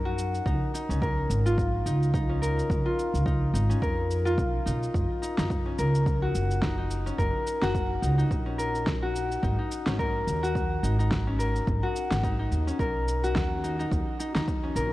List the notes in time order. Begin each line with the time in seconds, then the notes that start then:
Already playing: F#2 C#4 D#4 A#4
0.05 F#4
0.18 cabasa
0.34 cabasa
0.46 C#2 D#4, kick, cabasa
0.74 D#4, cabasa
0.89 C#2 C#4, cabasa
1.02 A#4, kick, cabasa
1.30 G#1, cabasa
1.46 F4, cabasa
1.58 kick, cabasa
1.86 C#2 D#4, cabasa
2.03 cabasa
2.14 D#4, kick, cabasa
2.29 C#4
2.42 A#4, cabasa
2.59 cabasa
2.70 C#2, kick, cabasa
2.85 F4
2.99 cabasa
3.14 C#2, cabasa
3.26 D#4, kick, cabasa
3.53 G#1 D#4, cabasa
3.69 C#4, cabasa
3.82 F2 A#4, kick, cabasa
4.11 cabasa
4.25 F4, cabasa
4.38 B1, kick, cabasa
4.66 B1 D#4, cabasa
4.83 cabasa
4.94 F#1, kick, cabasa
5.22 D#4, cabasa
5.38 F#1 D#4, snare, cabasa
5.50 kick, cabasa
5.66 C#4
5.78 C#2 A#4, cabasa
5.95 cabasa
6.06 kick, cabasa
6.22 F#4
6.35 F#1, cabasa
6.51 cabasa
6.62 D#4, kick, snare, cabasa
6.78 D#4
6.91 cabasa
7.06 C#4, cabasa
7.18 F#1 A#4, kick, cabasa
7.47 cabasa
7.62 F#1 F#4, snare, cabasa
7.75 kick, cabasa
8.02 C#2 D#4, cabasa
8.18 D#4, cabasa
8.31 A#1, kick, cabasa
8.46 C#4
8.58 A#4, cabasa
8.75 cabasa
8.87 kick, snare, cabasa
9.02 F#4
9.16 cabasa
9.32 cabasa
9.43 G#1 D#4, kick, cabasa
9.59 D#4
9.72 cabasa
9.87 G#1 C#4, snare, cabasa
9.99 A#4, kick, cabasa
10.27 D#2, cabasa
10.43 F#4, cabasa
10.55 kick, cabasa
10.83 G#1 D#4, cabasa
10.99 D#4, cabasa
11.11 kick, snare, cabasa
11.27 C#4
11.39 A#4, cabasa
11.56 cabasa
11.67 G#1, kick, cabasa
11.83 F#4
11.96 cabasa
12.11 G#1, snare, cabasa
12.23 D#4, kick, cabasa
12.39 D#4
12.51 D#2, cabasa
12.67 C#4, cabasa
12.79 B1 A#4, kick, cabasa
13.08 cabasa
13.24 F#4, cabasa
13.36 D#2, kick, snare, cabasa
13.64 D#4, cabasa
13.79 D#4, cabasa
13.91 D#2, kick, cabasa
14.19 D#4, cabasa
14.35 D#2 D#4, snare, cabasa
14.48 kick, cabasa
14.64 C#4
14.76 A#1 A#4, cabasa